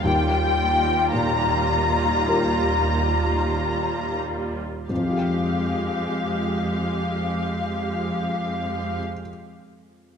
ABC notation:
X:1
M:4/4
L:1/8
Q:1/4=45
K:Fm
V:1 name="Violin section"
g2 b4- b z | f8 |]
V:2 name="Felt piano"
E,,2 B,,2 [FGB]4 | [F,,F,FGg]8 |]
V:3 name="Viola section"
[G,F]8 | [A,G]8 |]
V:4 name="Cello section" clef=bass
E,,8 | F,,8 |]